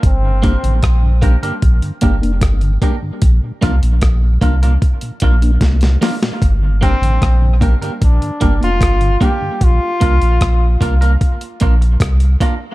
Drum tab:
HH |x-xxx-xxxxxxxxx-|x-xxx-xxxxxxxxo-|x-xxx-xxxxxxxxx-|x-xxx-xxxxxxxxx-|
SD |----r-------r---|--r-r-------oooo|----r-------r---|----r-------r---|
BD |o-o-o-o-o-o-o-o-|o-o-o-o-o-o-o---|o-o-o-o-o-o-o-o-|o-o-o-o-o-o-o-o-|